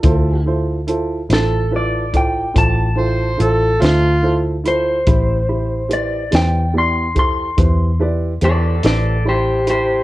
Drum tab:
HH |x-xx-xx-xx-x|x-xx-xx-xx-x|
SD |---o-----o--|---o-----o--|
BD |o----oo-----|o----oo-----|